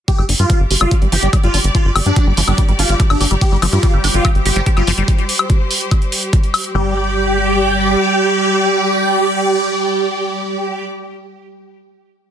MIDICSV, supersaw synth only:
0, 0, Header, 1, 2, 480
1, 0, Start_track
1, 0, Tempo, 416667
1, 93, Time_signature, 4, 2, 24, 8
1, 14178, End_track
2, 0, Start_track
2, 0, Title_t, "Supersaw synth"
2, 0, Program_c, 0, 81
2, 93, Note_on_c, 0, 67, 96
2, 266, Note_off_c, 0, 67, 0
2, 453, Note_on_c, 0, 65, 94
2, 683, Note_off_c, 0, 65, 0
2, 933, Note_on_c, 0, 65, 93
2, 1106, Note_off_c, 0, 65, 0
2, 1293, Note_on_c, 0, 67, 97
2, 1466, Note_off_c, 0, 67, 0
2, 1653, Note_on_c, 0, 65, 94
2, 1826, Note_off_c, 0, 65, 0
2, 2013, Note_on_c, 0, 65, 99
2, 2186, Note_off_c, 0, 65, 0
2, 2373, Note_on_c, 0, 62, 96
2, 2603, Note_off_c, 0, 62, 0
2, 2853, Note_on_c, 0, 62, 93
2, 3026, Note_off_c, 0, 62, 0
2, 3213, Note_on_c, 0, 65, 99
2, 3386, Note_off_c, 0, 65, 0
2, 3573, Note_on_c, 0, 62, 99
2, 3746, Note_off_c, 0, 62, 0
2, 3933, Note_on_c, 0, 67, 97
2, 4106, Note_off_c, 0, 67, 0
2, 4293, Note_on_c, 0, 65, 98
2, 4523, Note_off_c, 0, 65, 0
2, 4773, Note_on_c, 0, 65, 98
2, 4946, Note_off_c, 0, 65, 0
2, 5133, Note_on_c, 0, 67, 96
2, 5306, Note_off_c, 0, 67, 0
2, 5494, Note_on_c, 0, 65, 101
2, 5666, Note_off_c, 0, 65, 0
2, 7773, Note_on_c, 0, 67, 104
2, 12489, Note_off_c, 0, 67, 0
2, 14178, End_track
0, 0, End_of_file